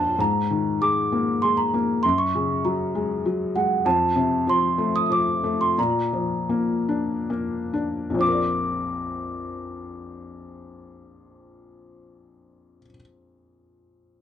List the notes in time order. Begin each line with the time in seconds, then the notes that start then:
Already playing: A#2 F3 A#3 D4 F4 C5 D5 F5 A5
0.18 G#2 A#5
0.51 D#3
0.81 G#3 D6
1.12 A#3
1.42 G#3 C6
1.57 A#5
1.74 A#3
2.03 F#2 C6
2.18 C#6
2.35 C#3
2.65 F#3 A#5
2.95 G#3
3.25 F#3
3.56 G#3 F#5
3.85 F2 A5
4.16 C3
4.47 F3 C6
4.78 A3
4.96 D#6
5.10 F3 D6
5.43 A3
5.61 C6
5.78 A#2 A#5
6.13 F3
6.49 A#3
6.89 D4
7.30 A#3
7.73 D4
8.10 A#1
8.14 F2
8.19 C4 D6
8.23 F4
8.27 A#4
8.32 D5